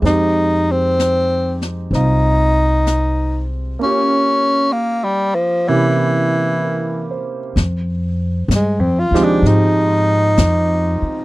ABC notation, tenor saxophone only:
X:1
M:4/4
L:1/16
Q:"Swing" 1/4=64
K:Fm
V:1 name="Tenor saxophone"
E2 C4 z2 E6 z2 | D4 (3B,2 G,2 F,2 =E,6 z2 | z4 A, C F =D E8 |]